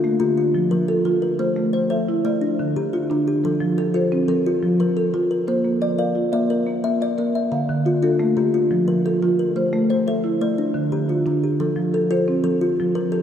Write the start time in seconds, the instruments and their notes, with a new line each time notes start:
Already playing: kalimba D4 F4, marimba F4 A4
0.04 marimba A3
0.20 kalimba D3 F4, marimba G4
0.38 kalimba F4
0.55 marimba F3
0.71 kalimba F3 A#4
0.88 kalimba A4, marimba A4
1.05 kalimba F3, marimba F4
1.22 kalimba A#4
1.39 kalimba A3, marimba C5
1.56 marimba A3
1.73 kalimba C5, marimba C5
1.90 kalimba A4 C5, marimba E5
2.08 marimba E4
2.25 kalimba A3 C5, marimba D5
2.41 kalimba D4
2.59 marimba D3
2.76 kalimba D3 G4
2.93 kalimba F4, marimba F4
3.10 kalimba D3, marimba D4
3.28 kalimba G4
3.44 kalimba F3, marimba A4
3.60 marimba F3
3.78 marimba A4, kalimba A4
3.94 kalimba F4 A4, marimba C5
4.12 marimba C4
4.28 kalimba F3 A4, marimba A#4
4.46 kalimba F4
4.63 marimba F3
4.80 kalimba F3 A#4
4.97 kalimba A4, marimba A4
5.14 kalimba F3, marimba F4
5.31 kalimba A#4
5.48 kalimba A#3, marimba C5
5.65 marimba A#3
5.82 marimba D5, kalimba D5
5.99 kalimba A#4 D5, marimba F5
6.15 marimba F4
6.32 kalimba A#3 D5, marimba E5
6.50 kalimba A#4
6.67 marimba A#3
6.84 kalimba A#3 E5
7.01 marimba D5, kalimba D5
7.18 kalimba A#3, marimba A#4
7.35 kalimba E5
7.52 kalimba D3, marimba F5
7.69 marimba D3
7.85 marimba F4, kalimba F4
8.02 kalimba D4 F4, marimba A4
8.20 marimba A3
8.37 kalimba D3 F4, marimba G4
8.54 kalimba F4
8.71 marimba F3
8.88 kalimba F3 A#4
9.05 marimba A4, kalimba A4
9.22 kalimba F3, marimba F4
9.39 kalimba A#4
9.56 kalimba A3, marimba C5
9.73 marimba A3
9.90 marimba C5, kalimba C5
10.07 kalimba A4 C5, marimba E5
10.24 marimba E4
10.41 kalimba A3 C5, marimba D5
10.58 kalimba D4
10.74 marimba D3
10.92 kalimba D3 G4
11.09 marimba F4, kalimba F4
11.26 kalimba D3, marimba D4
11.44 kalimba G4
11.60 kalimba F3, marimba A4
11.76 marimba F3
11.94 marimba A4, kalimba A4
12.11 kalimba F4 A4, marimba C5
12.28 marimba C4
12.44 kalimba F3 A4
12.61 kalimba F4
12.80 marimba F3
12.95 kalimba F3 A#4
13.12 marimba G4, kalimba A4